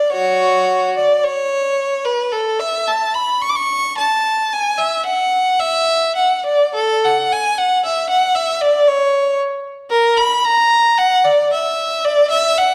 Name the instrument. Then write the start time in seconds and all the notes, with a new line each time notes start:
violin
Already playing: D5
0.12 F#4 C#5
0.97 D5
1.24 C#5
2.05 B4
2.32 A4
2.59 E5
2.88 A5
3.14 B5
3.42 C#6
3.49 D6
3.55 C#6
3.98 A5
4.53 G#5
4.78 E5
5.06 F#5
5.59 E5
6.16 F#5
6.46 D5
6.74 A4
7.05 F#5
7.32 G#5
7.58 F#5
7.85 E5
8.10 F#5
8.35 E5
8.61 D5
8.88 C#5
9.91 A#4
10.17 B5
10.44 A#5
10.98 F#5
11.25 D5
11.53 E5
12.04 D5
12.30 E5
12.58 F#5